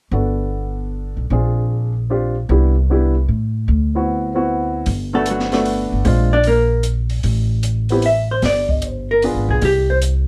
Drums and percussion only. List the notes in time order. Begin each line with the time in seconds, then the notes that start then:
4.86 kick, open hi-hat
5.26 closed hi-hat
5.39 snare
5.52 snare, open hi-hat
5.65 open hi-hat
6.05 kick, open hi-hat
6.44 open hi-hat
6.83 closed hi-hat
7.10 open hi-hat
7.23 kick, open hi-hat
7.63 closed hi-hat
7.89 open hi-hat
8.02 open hi-hat
8.42 kick, snare, open hi-hat
8.69 kick
8.82 closed hi-hat
9.22 open hi-hat
9.62 kick, open hi-hat
10.02 closed hi-hat